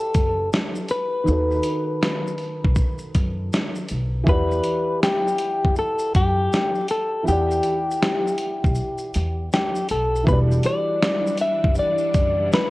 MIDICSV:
0, 0, Header, 1, 6, 480
1, 0, Start_track
1, 0, Key_signature, 1, "minor"
1, 0, Tempo, 750000
1, 813, Time_signature, 4, 2, 24, 8
1, 8128, End_track
2, 0, Start_track
2, 0, Title_t, "Clean electric guitar"
2, 0, Program_c, 0, 27
2, 0, Note_on_c, 0, 69, 71
2, 313, Note_off_c, 0, 69, 0
2, 582, Note_on_c, 0, 71, 87
2, 1992, Note_off_c, 0, 71, 0
2, 2745, Note_on_c, 0, 71, 101
2, 3219, Note_off_c, 0, 71, 0
2, 3222, Note_on_c, 0, 67, 82
2, 3702, Note_off_c, 0, 67, 0
2, 3704, Note_on_c, 0, 69, 83
2, 3941, Note_off_c, 0, 69, 0
2, 3943, Note_on_c, 0, 67, 90
2, 4393, Note_off_c, 0, 67, 0
2, 4423, Note_on_c, 0, 69, 84
2, 4659, Note_off_c, 0, 69, 0
2, 4662, Note_on_c, 0, 67, 76
2, 6072, Note_off_c, 0, 67, 0
2, 6103, Note_on_c, 0, 67, 76
2, 6340, Note_off_c, 0, 67, 0
2, 6342, Note_on_c, 0, 69, 80
2, 6577, Note_off_c, 0, 69, 0
2, 6579, Note_on_c, 0, 71, 103
2, 6643, Note_off_c, 0, 71, 0
2, 6823, Note_on_c, 0, 74, 106
2, 7303, Note_off_c, 0, 74, 0
2, 7306, Note_on_c, 0, 76, 91
2, 7545, Note_off_c, 0, 76, 0
2, 7548, Note_on_c, 0, 74, 83
2, 8025, Note_off_c, 0, 74, 0
2, 8028, Note_on_c, 0, 71, 87
2, 8128, Note_off_c, 0, 71, 0
2, 8128, End_track
3, 0, Start_track
3, 0, Title_t, "Felt piano"
3, 0, Program_c, 1, 0
3, 0, Control_c, 1, 64, 127
3, 0, Note_on_c, 1, 52, 64
3, 0, Note_on_c, 1, 64, 59
3, 0, Note_on_c, 1, 66, 56
3, 0, Note_on_c, 1, 67, 55
3, 0, Note_on_c, 1, 71, 63
3, 0, Note_on_c, 1, 74, 75
3, 0, Note_on_c, 1, 78, 50
3, 777, Note_off_c, 1, 52, 0
3, 784, Note_off_c, 1, 64, 0
3, 791, Note_off_c, 1, 78, 0
3, 792, Note_on_c, 1, 51, 64
3, 798, Note_off_c, 1, 67, 0
3, 805, Note_off_c, 1, 74, 0
3, 806, Note_on_c, 1, 63, 64
3, 819, Note_off_c, 1, 66, 0
3, 819, Note_on_c, 1, 66, 64
3, 821, Control_c, 1, 64, 0
3, 823, Note_off_c, 1, 71, 0
3, 834, Note_on_c, 1, 69, 59
3, 848, Note_on_c, 1, 71, 72
3, 946, Control_c, 1, 64, 127
3, 2697, Note_off_c, 1, 51, 0
3, 2704, Note_off_c, 1, 63, 0
3, 2710, Note_off_c, 1, 66, 0
3, 2711, Note_on_c, 1, 52, 70
3, 2718, Note_off_c, 1, 69, 0
3, 2725, Note_off_c, 1, 71, 0
3, 2725, Note_on_c, 1, 64, 62
3, 2739, Note_on_c, 1, 78, 61
3, 2742, Control_c, 1, 64, 0
3, 2754, Note_on_c, 1, 67, 61
3, 2767, Note_on_c, 1, 74, 64
3, 2846, Control_c, 1, 64, 127
3, 4616, Note_off_c, 1, 52, 0
3, 4623, Note_off_c, 1, 64, 0
3, 4630, Note_off_c, 1, 78, 0
3, 4630, Note_on_c, 1, 52, 59
3, 4638, Note_off_c, 1, 67, 0
3, 4643, Note_on_c, 1, 64, 58
3, 4644, Note_off_c, 1, 74, 0
3, 4658, Note_on_c, 1, 78, 50
3, 4662, Control_c, 1, 64, 0
3, 4672, Note_on_c, 1, 67, 56
3, 4687, Note_on_c, 1, 74, 63
3, 4766, Control_c, 1, 64, 127
3, 6536, Note_off_c, 1, 52, 0
3, 6542, Note_off_c, 1, 64, 0
3, 6549, Note_on_c, 1, 52, 61
3, 6550, Note_off_c, 1, 78, 0
3, 6557, Note_off_c, 1, 67, 0
3, 6563, Note_on_c, 1, 64, 58
3, 6564, Note_off_c, 1, 74, 0
3, 6577, Note_on_c, 1, 66, 51
3, 6581, Control_c, 1, 64, 0
3, 6591, Note_on_c, 1, 55, 60
3, 6606, Note_on_c, 1, 74, 75
3, 6686, Control_c, 1, 64, 127
3, 8128, Note_off_c, 1, 52, 0
3, 8128, Note_off_c, 1, 55, 0
3, 8128, Note_off_c, 1, 64, 0
3, 8128, Note_off_c, 1, 66, 0
3, 8128, Note_off_c, 1, 74, 0
3, 8128, End_track
4, 0, Start_track
4, 0, Title_t, "String machine"
4, 0, Program_c, 2, 50
4, 6566, Note_on_c, 2, 62, 76
4, 6567, Note_on_c, 2, 52, 79
4, 6567, Note_on_c, 2, 55, 80
4, 6567, Note_on_c, 2, 78, 92
4, 8128, Note_off_c, 2, 52, 0
4, 8128, Note_off_c, 2, 55, 0
4, 8128, Note_off_c, 2, 62, 0
4, 8128, Note_off_c, 2, 78, 0
4, 8128, End_track
5, 0, Start_track
5, 0, Title_t, "Upright bass"
5, 0, Program_c, 3, 32
5, 99, Note_on_c, 3, 30, 81
5, 301, Note_off_c, 3, 30, 0
5, 821, Note_on_c, 3, 39, 99
5, 1022, Note_off_c, 3, 39, 0
5, 1697, Note_on_c, 3, 35, 79
5, 1766, Note_off_c, 3, 35, 0
5, 2018, Note_on_c, 3, 42, 92
5, 2220, Note_off_c, 3, 42, 0
5, 2503, Note_on_c, 3, 35, 76
5, 2703, Note_off_c, 3, 35, 0
5, 2735, Note_on_c, 3, 40, 103
5, 2938, Note_off_c, 3, 40, 0
5, 3618, Note_on_c, 3, 42, 73
5, 3687, Note_off_c, 3, 42, 0
5, 3940, Note_on_c, 3, 42, 88
5, 4142, Note_off_c, 3, 42, 0
5, 4662, Note_on_c, 3, 40, 104
5, 4862, Note_off_c, 3, 40, 0
5, 5537, Note_on_c, 3, 35, 83
5, 5607, Note_off_c, 3, 35, 0
5, 5862, Note_on_c, 3, 40, 97
5, 6062, Note_off_c, 3, 40, 0
5, 6340, Note_on_c, 3, 35, 69
5, 6541, Note_off_c, 3, 35, 0
5, 6573, Note_on_c, 3, 28, 108
5, 6778, Note_off_c, 3, 28, 0
5, 7456, Note_on_c, 3, 30, 81
5, 7526, Note_off_c, 3, 30, 0
5, 7777, Note_on_c, 3, 30, 85
5, 7980, Note_off_c, 3, 30, 0
5, 8128, End_track
6, 0, Start_track
6, 0, Title_t, "Drums"
6, 92, Note_on_c, 9, 42, 64
6, 92, Note_on_c, 9, 82, 46
6, 94, Note_on_c, 9, 36, 91
6, 156, Note_off_c, 9, 42, 0
6, 156, Note_off_c, 9, 82, 0
6, 158, Note_off_c, 9, 36, 0
6, 337, Note_on_c, 9, 82, 56
6, 345, Note_on_c, 9, 38, 105
6, 401, Note_off_c, 9, 82, 0
6, 409, Note_off_c, 9, 38, 0
6, 482, Note_on_c, 9, 82, 46
6, 546, Note_off_c, 9, 82, 0
6, 567, Note_on_c, 9, 42, 63
6, 567, Note_on_c, 9, 82, 43
6, 631, Note_off_c, 9, 42, 0
6, 631, Note_off_c, 9, 82, 0
6, 817, Note_on_c, 9, 82, 50
6, 881, Note_off_c, 9, 82, 0
6, 968, Note_on_c, 9, 82, 37
6, 1032, Note_off_c, 9, 82, 0
6, 1046, Note_on_c, 9, 42, 59
6, 1046, Note_on_c, 9, 82, 43
6, 1110, Note_off_c, 9, 42, 0
6, 1110, Note_off_c, 9, 82, 0
6, 1298, Note_on_c, 9, 38, 96
6, 1300, Note_on_c, 9, 82, 54
6, 1362, Note_off_c, 9, 38, 0
6, 1364, Note_off_c, 9, 82, 0
6, 1456, Note_on_c, 9, 82, 51
6, 1520, Note_off_c, 9, 82, 0
6, 1524, Note_on_c, 9, 42, 60
6, 1524, Note_on_c, 9, 82, 40
6, 1588, Note_off_c, 9, 42, 0
6, 1588, Note_off_c, 9, 82, 0
6, 1693, Note_on_c, 9, 36, 88
6, 1757, Note_off_c, 9, 36, 0
6, 1763, Note_on_c, 9, 82, 69
6, 1767, Note_on_c, 9, 36, 97
6, 1827, Note_off_c, 9, 82, 0
6, 1831, Note_off_c, 9, 36, 0
6, 1909, Note_on_c, 9, 82, 44
6, 1973, Note_off_c, 9, 82, 0
6, 2013, Note_on_c, 9, 42, 66
6, 2013, Note_on_c, 9, 82, 50
6, 2015, Note_on_c, 9, 36, 78
6, 2077, Note_off_c, 9, 42, 0
6, 2077, Note_off_c, 9, 82, 0
6, 2079, Note_off_c, 9, 36, 0
6, 2257, Note_on_c, 9, 82, 60
6, 2264, Note_on_c, 9, 38, 94
6, 2321, Note_off_c, 9, 82, 0
6, 2328, Note_off_c, 9, 38, 0
6, 2402, Note_on_c, 9, 82, 49
6, 2466, Note_off_c, 9, 82, 0
6, 2486, Note_on_c, 9, 42, 63
6, 2486, Note_on_c, 9, 82, 45
6, 2550, Note_off_c, 9, 42, 0
6, 2550, Note_off_c, 9, 82, 0
6, 2731, Note_on_c, 9, 36, 114
6, 2738, Note_on_c, 9, 82, 46
6, 2795, Note_off_c, 9, 36, 0
6, 2802, Note_off_c, 9, 82, 0
6, 2889, Note_on_c, 9, 82, 34
6, 2953, Note_off_c, 9, 82, 0
6, 2966, Note_on_c, 9, 42, 53
6, 2966, Note_on_c, 9, 82, 44
6, 3030, Note_off_c, 9, 42, 0
6, 3030, Note_off_c, 9, 82, 0
6, 3218, Note_on_c, 9, 38, 115
6, 3220, Note_on_c, 9, 82, 56
6, 3282, Note_off_c, 9, 38, 0
6, 3284, Note_off_c, 9, 82, 0
6, 3376, Note_on_c, 9, 82, 48
6, 3440, Note_off_c, 9, 82, 0
6, 3445, Note_on_c, 9, 42, 61
6, 3445, Note_on_c, 9, 82, 41
6, 3509, Note_off_c, 9, 42, 0
6, 3509, Note_off_c, 9, 82, 0
6, 3614, Note_on_c, 9, 36, 84
6, 3678, Note_off_c, 9, 36, 0
6, 3685, Note_on_c, 9, 82, 65
6, 3749, Note_off_c, 9, 82, 0
6, 3833, Note_on_c, 9, 82, 46
6, 3897, Note_off_c, 9, 82, 0
6, 3935, Note_on_c, 9, 42, 67
6, 3935, Note_on_c, 9, 82, 49
6, 3936, Note_on_c, 9, 36, 87
6, 3999, Note_off_c, 9, 42, 0
6, 3999, Note_off_c, 9, 82, 0
6, 4000, Note_off_c, 9, 36, 0
6, 4178, Note_on_c, 9, 82, 62
6, 4185, Note_on_c, 9, 38, 96
6, 4242, Note_off_c, 9, 82, 0
6, 4249, Note_off_c, 9, 38, 0
6, 4321, Note_on_c, 9, 82, 45
6, 4385, Note_off_c, 9, 82, 0
6, 4406, Note_on_c, 9, 42, 61
6, 4406, Note_on_c, 9, 82, 47
6, 4470, Note_off_c, 9, 42, 0
6, 4470, Note_off_c, 9, 82, 0
6, 4658, Note_on_c, 9, 82, 51
6, 4722, Note_off_c, 9, 82, 0
6, 4809, Note_on_c, 9, 82, 40
6, 4873, Note_off_c, 9, 82, 0
6, 4886, Note_on_c, 9, 42, 61
6, 4886, Note_on_c, 9, 82, 43
6, 4950, Note_off_c, 9, 42, 0
6, 4950, Note_off_c, 9, 82, 0
6, 5064, Note_on_c, 9, 82, 49
6, 5128, Note_off_c, 9, 82, 0
6, 5138, Note_on_c, 9, 38, 109
6, 5140, Note_on_c, 9, 82, 58
6, 5202, Note_off_c, 9, 38, 0
6, 5204, Note_off_c, 9, 82, 0
6, 5296, Note_on_c, 9, 82, 51
6, 5360, Note_off_c, 9, 82, 0
6, 5364, Note_on_c, 9, 42, 60
6, 5364, Note_on_c, 9, 82, 43
6, 5428, Note_off_c, 9, 42, 0
6, 5428, Note_off_c, 9, 82, 0
6, 5533, Note_on_c, 9, 36, 93
6, 5540, Note_on_c, 9, 82, 41
6, 5597, Note_off_c, 9, 36, 0
6, 5603, Note_off_c, 9, 82, 0
6, 5603, Note_on_c, 9, 82, 66
6, 5667, Note_off_c, 9, 82, 0
6, 5749, Note_on_c, 9, 82, 41
6, 5813, Note_off_c, 9, 82, 0
6, 5852, Note_on_c, 9, 42, 66
6, 5852, Note_on_c, 9, 82, 45
6, 5916, Note_off_c, 9, 42, 0
6, 5916, Note_off_c, 9, 82, 0
6, 6096, Note_on_c, 9, 82, 53
6, 6104, Note_on_c, 9, 38, 105
6, 6160, Note_off_c, 9, 82, 0
6, 6168, Note_off_c, 9, 38, 0
6, 6242, Note_on_c, 9, 82, 48
6, 6306, Note_off_c, 9, 82, 0
6, 6326, Note_on_c, 9, 42, 64
6, 6326, Note_on_c, 9, 82, 44
6, 6390, Note_off_c, 9, 42, 0
6, 6390, Note_off_c, 9, 82, 0
6, 6497, Note_on_c, 9, 82, 43
6, 6561, Note_off_c, 9, 82, 0
6, 6569, Note_on_c, 9, 36, 104
6, 6576, Note_on_c, 9, 82, 49
6, 6633, Note_off_c, 9, 36, 0
6, 6640, Note_off_c, 9, 82, 0
6, 6728, Note_on_c, 9, 82, 37
6, 6792, Note_off_c, 9, 82, 0
6, 6804, Note_on_c, 9, 42, 59
6, 6804, Note_on_c, 9, 82, 43
6, 6868, Note_off_c, 9, 42, 0
6, 6868, Note_off_c, 9, 82, 0
6, 7057, Note_on_c, 9, 38, 114
6, 7058, Note_on_c, 9, 82, 53
6, 7121, Note_off_c, 9, 38, 0
6, 7122, Note_off_c, 9, 82, 0
6, 7213, Note_on_c, 9, 82, 48
6, 7277, Note_off_c, 9, 82, 0
6, 7281, Note_on_c, 9, 42, 58
6, 7281, Note_on_c, 9, 82, 42
6, 7345, Note_off_c, 9, 42, 0
6, 7345, Note_off_c, 9, 82, 0
6, 7451, Note_on_c, 9, 36, 90
6, 7515, Note_off_c, 9, 36, 0
6, 7521, Note_on_c, 9, 82, 64
6, 7585, Note_off_c, 9, 82, 0
6, 7668, Note_on_c, 9, 82, 44
6, 7732, Note_off_c, 9, 82, 0
6, 7771, Note_on_c, 9, 42, 59
6, 7771, Note_on_c, 9, 82, 50
6, 7773, Note_on_c, 9, 36, 88
6, 7835, Note_off_c, 9, 42, 0
6, 7835, Note_off_c, 9, 82, 0
6, 7837, Note_off_c, 9, 36, 0
6, 8016, Note_on_c, 9, 82, 56
6, 8023, Note_on_c, 9, 38, 116
6, 8080, Note_off_c, 9, 82, 0
6, 8087, Note_off_c, 9, 38, 0
6, 8128, End_track
0, 0, End_of_file